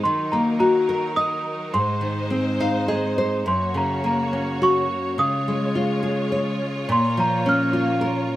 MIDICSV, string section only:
0, 0, Header, 1, 2, 480
1, 0, Start_track
1, 0, Key_signature, -5, "major"
1, 0, Tempo, 564440
1, 38, Time_signature, 3, 2, 24, 8
1, 1959, Tempo, 575264
1, 5319, Tempo, 560224
1, 7060, End_track
2, 0, Start_track
2, 0, Title_t, "String section"
2, 0, Program_c, 0, 48
2, 0, Note_on_c, 0, 63, 64
2, 51, Note_on_c, 0, 70, 81
2, 53, Note_on_c, 0, 54, 70
2, 1469, Note_on_c, 0, 72, 85
2, 1470, Note_off_c, 0, 70, 0
2, 1471, Note_off_c, 0, 54, 0
2, 1472, Note_on_c, 0, 56, 67
2, 2898, Note_off_c, 0, 63, 0
2, 2908, Note_off_c, 0, 72, 0
2, 2910, Note_off_c, 0, 56, 0
2, 2926, Note_on_c, 0, 73, 79
2, 2927, Note_on_c, 0, 58, 68
2, 2935, Note_on_c, 0, 66, 64
2, 4352, Note_off_c, 0, 58, 0
2, 4356, Note_off_c, 0, 66, 0
2, 4364, Note_on_c, 0, 65, 68
2, 4367, Note_on_c, 0, 56, 74
2, 5789, Note_on_c, 0, 58, 74
2, 5790, Note_off_c, 0, 56, 0
2, 7060, Note_off_c, 0, 58, 0
2, 7060, Note_off_c, 0, 65, 0
2, 7060, Note_off_c, 0, 73, 0
2, 7060, End_track
0, 0, End_of_file